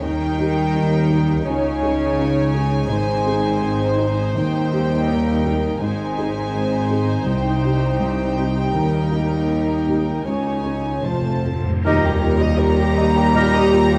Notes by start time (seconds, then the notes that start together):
0.00 D#2 D#3 G3 D#4 A#4 G5
0.39 A#3 D#4 G4
0.75 D#2 D#3
1.10 A#3 D#4 G4
1.45 C#2 C#3 G#3 C#5 G#5
1.81 C#4 D#4 G#4
2.17 C#2 C#3
2.54 C#4 D#4 G#4
2.89 G#1 G#2 C4 C5
3.26 C4 D#4 G#4
3.61 G#1 G#2
3.98 C4 D#4 G#4
4.35 D#2 D#3 G3 A#3 G5
4.72 A#3 D#4 G4
5.08 D#2 D#3 A#4
5.45 A#3 D#4 G4
5.80 G#1 G#2 G#3 C4 D#4 C5 G#5
6.17 C4 D#4 G#4
6.54 G#1 G#2
6.91 C4 D#4 G#4
7.26 C2 C3 G3 D#4 G5
7.64 C4 D#4 G4
8.00 C2 C3
8.37 C4 D#4 G4
8.74 D#2 D#3 A#4
9.11 A#3 D#4 G4
9.49 D#2 D#3
9.87 A#3 D#4 G4
10.25 C#2 C#3 G#3 C#5 G#5
10.64 C#4 D#4 G#4
11.03 F1 F2 A3 C4 F4 C5 A5
11.13 F2
11.21 F2
11.29 F2
11.38 F2
11.44 F2 C4 F4 A4
11.55 F2
11.63 F2
11.71 F2
11.85 D#2 G3 A#3 D#4 G4 A#4 D#5 A#5, tam-tam
12.02 G4
12.22 F4 A#4
12.40 G4 D#5
12.59 F4 A#4
12.79 G4
12.96 D#4 D#5
13.16 G4 A#4
13.35 A#2 G4 A#4 D#5
13.54 G4 D#5
13.72 F4 A#4
13.92 G4